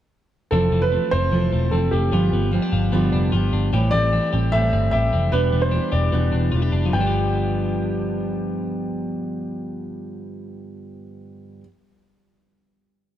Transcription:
0.51 0.69 F1 medium
0.51 0.71 E3 medium
0.51 0.91 F3 medium
0.51 0.91 C4 medium
0.51 1.11 C4 medium
0.51 0.92 E4 medium
0.51 0.83 A4 medium
0.51 0.93 A4 medium
0.72 0.97 F1 medium
0.72 1.31 E3 medium
0.82 1.13 B4 medium
0.91 1.12 F3 medium
0.91 1.51 A3 medium
0.91 1.13 C4 medium
0.91 1.12 E4 medium
0.91 1.10 A4 medium
1.11 1.29 F1 medium
1.11 1.71 C4 medium
1.11 1.31 C4 soft
1.11 1.32 E4 soft
1.11 1.32 A4 soft
1.11 1.74 C5 loud
1.31 1.49 F1 medium
1.31 2.12 E3 medium
1.31 1.71 F3 medium
1.31 1.71 C4 medium
1.31 1.73 E4 medium
1.31 1.73 A4 medium
1.52 1.69 E1 medium
1.52 1.92 A3 medium
1.71 1.89 F1 medium
1.71 2.11 F3 soft
1.71 2.17 C4 medium
1.71 2.12 C4 soft
1.71 2.13 E4 medium
1.71 1.93 A4 medium
1.71 2.13 A4 medium
1.91 2.09 F1 medium
1.91 2.17 A3 medium
1.91 2.48 G4 medium
2.11 2.29 G1 medium
2.11 2.32 G2 medium
2.11 2.32 D3 medium
2.11 3.72 F3 medium
2.11 2.33 F3 medium
2.11 2.33 G3 medium
2.11 2.32 B3 medium
2.11 2.71 F4 medium
2.11 2.31 G4 medium
2.32 2.58 G1 medium
2.32 2.50 F3 soft
2.32 2.51 G3 soft
2.32 2.91 B3 medium
2.32 2.53 B3 soft
2.32 2.52 G4 soft
2.51 2.92 F3 medium
2.51 2.93 G3 medium
2.51 2.93 B3 medium
2.51 2.62 C4 medium
2.51 2.94 G4 medium
2.62 3.11 D4 soft
2.72 2.89 G1 medium
2.72 3.31 F4 medium
2.92 3.09 G1 medium
2.92 3.32 G2 medium
2.92 3.33 D3 medium
2.92 3.31 F3 medium
2.92 3.33 G3 medium
2.92 3.77 B3 medium
2.92 3.33 B3 medium
2.92 3.35 G4 medium
3.12 3.29 F1 medium
3.12 3.52 D4 medium
3.32 3.50 G1 medium
3.32 3.72 F3 medium
3.32 3.73 G3 medium
3.32 3.74 B3 medium
3.32 3.72 F4 medium
3.32 3.74 G4 medium
3.53 3.70 G1 medium
3.53 3.77 D4 medium
3.72 3.89 A1 medium
3.72 3.93 A2 medium
3.72 5.33 E3 medium
3.72 3.93 E3 medium
3.72 3.93 G3 medium
3.72 3.92 C4 medium
3.72 4.32 G4 medium
3.72 3.91 G4 medium
3.91 4.18 A1 medium
3.91 4.52 A3 medium
3.91 4.13 C4 soft
3.91 4.12 G4 soft
3.91 4.29 D5 loud
3.95 4.13 G3 soft
4.12 4.33 E3 medium
4.12 4.33 G3 medium
4.12 4.72 C4 medium
4.12 4.33 C4 medium
4.12 4.31 G4 medium
4.32 4.50 A1 medium
4.32 4.53 G3 soft
4.32 4.53 C4 soft
4.32 4.52 G4 soft
4.32 4.92 G4 medium
4.52 4.70 A1 medium
4.52 4.93 A2 medium
4.52 4.92 E3 medium
4.52 4.93 G3 medium
4.52 5.32 A3 medium
4.52 4.94 C4 medium
4.52 4.95 G4 medium
4.52 4.90 E5 loud
4.73 4.90 G1 medium
4.73 5.12 C4 medium
4.91 5.09 A1 medium
4.91 5.32 E3 medium
4.91 5.33 G3 medium
4.91 5.34 C4 medium
4.91 5.33 G4 medium
4.91 5.29 E5 medium
4.96 5.34 G4 medium
5.13 5.30 F1 medium
5.13 5.37 C4 medium
5.32 5.50 E1 medium
5.32 5.73 E2 medium
5.32 5.73 B2 medium
5.32 5.71 E3 medium
5.32 5.73 G3 medium
5.32 5.52 B3 medium
5.32 5.74 D4 medium
5.32 5.74 E4 medium
5.32 5.92 G4 medium
5.32 5.63 B4 medium
5.52 5.78 E1 loud
5.52 6.12 B3 medium
5.62 5.90 C5 medium
5.71 6.12 E3 medium
5.71 6.13 G3 medium
5.71 6.32 D4 medium
5.71 6.14 D4 medium
5.76 6.14 E4 medium
5.92 6.09 E1 medium
5.92 6.51 G4 medium
5.92 6.68 D5 medium
6.12 6.30 E1 medium
6.12 6.53 E2 medium
6.12 6.53 B2 medium
6.12 6.51 E3 medium
6.12 6.53 G3 medium
6.12 6.94 B3 medium
6.12 6.55 D4 medium
6.12 6.54 E4 medium
6.32 6.49 E1 medium
6.32 6.72 D4 soft
6.52 6.69 E1 medium
6.52 6.93 E3 medium
6.52 6.98 G3 medium
6.52 7.00 D4 medium
6.52 6.62 F4 medium
6.56 6.94 E4 medium
6.62 6.96 G4 soft
6.72 6.89 F1 medium
6.72 7.00 D4 medium
6.86 11.62 G2 medium
6.86 11.60 F3 medium
6.93 11.60 G1 medium
6.93 11.64 D3 medium
6.93 11.65 F3 medium
6.93 11.64 B3 medium
6.93 11.60 G5 medium
6.98 11.66 G3 medium
6.98 11.68 B3 medium
6.98 11.68 D4 medium
7.03 11.69 G4 medium
7.07 11.71 G4 medium

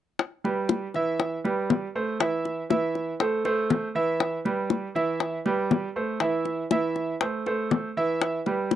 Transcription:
0.19 high bongo medium
0.44 0.86 G3 medium
0.44 0.86 G4 medium
0.44 0.86 B4 medium
0.44 high bongo soft
0.69 high bongo medium
0.94 1.36 E3 medium
0.94 1.36 E4 medium
0.94 1.36 E5 medium
0.94 high bongo soft
1.20 high bongo medium
1.44 1.86 G3 medium
1.44 1.86 G4 medium
1.44 1.86 B4 medium
1.44 high bongo soft
1.70 high bongo soft
1.70 low bongo medium
1.95 2.16 A3 medium
1.95 2.16 A4 medium
1.95 2.16 C5 medium
2.19 2.61 E3 medium
2.19 2.61 E4 medium
2.19 2.61 E5 medium
2.19 high bongo medium
2.45 high bongo soft
2.70 3.11 E3 medium
2.70 3.11 E4 medium
2.70 3.11 E5 medium
2.70 high bongo medium
2.95 high bongo soft
3.20 3.41 A3 medium
3.20 3.41 A4 medium
3.20 3.41 C5 medium
3.20 high bongo medium
3.45 3.86 A3 medium
3.45 3.86 A4 medium
3.45 3.86 C5 medium
3.45 high bongo soft
3.70 high bongo soft
3.70 low bongo medium
3.95 4.36 E3 medium
3.95 4.36 E4 medium
3.95 4.37 E5 medium
4.20 high bongo medium
4.45 4.86 G3 medium
4.45 4.86 G4 medium
4.45 4.87 B4 medium
4.45 high bongo soft
4.70 high bongo medium
4.95 5.36 E3 medium
4.95 5.36 E4 medium
4.95 5.37 E5 medium
4.95 high bongo soft
5.20 high bongo medium
5.46 5.87 G3 medium
5.46 5.87 G4 medium
5.46 5.87 B4 medium
5.46 high bongo soft
5.71 high bongo soft
5.71 low bongo medium
5.96 6.16 A3 medium
5.96 6.16 A4 medium
5.96 6.17 C5 medium
6.20 6.62 E3 medium
6.20 6.62 E4 medium
6.20 6.62 E5 medium
6.20 high bongo medium
6.45 high bongo soft
6.71 7.12 E3 medium
6.71 7.12 E4 medium
6.71 7.12 E5 medium
6.71 high bongo medium
6.96 high bongo soft
7.21 7.41 A3 medium
7.21 7.41 A4 medium
7.21 7.42 C5 medium
7.21 high bongo medium
7.46 7.87 A3 medium
7.46 7.87 A4 medium
7.46 7.88 C5 medium
7.46 high bongo soft
7.71 high bongo soft
7.71 low bongo medium
7.97 8.37 E3 medium
7.97 8.38 E4 medium
7.97 8.38 E5 medium
8.22 high bongo medium
8.46 8.76 G3 medium
8.46 8.76 G4 medium
8.46 8.76 B4 medium
8.46 high bongo soft
8.71 high bongo medium

